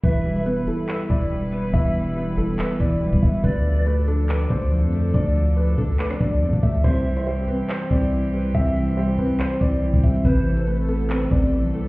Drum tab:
HH |x--------x--x-----x-----x--------x--------x-----|x-----x-----------x-----x-----x--------------x--|x--------x--x-----x-----x--------x--------x-----|x-----x-----------x-x-x-x-x-x-x--------------x--|
CP |------------------------x-----------------------|------------------------x-----------------------|------------------------x-----------------------|------------------------x-----------------------|
SD |------------------------------------------------|------------------------------------------------|------------------------------------------------|---------------------------r--------------------|
BD |o-----------------------------o-----------------|o-----------------------------o--------o--o-----|o-----------------------------o-----------------|o-----------------o-----------o--------o--o-----|

HH |x--------x--x-----x-----x--------x--------x-----|x-----x-----------x-----x-----x--------------x--|x--------x--x-----x-----x--------x--------x-----|
CP |------------------------x-----------------------|------------------------x-----------------------|------------------------x-----------------------|
SD |------------------------------------------------|------------------------------------------------|------------------------------------------------|
BD |o-----------------------------o-----------------|o-----------------------------o--------o--o-----|o-----------------------------o-----------------|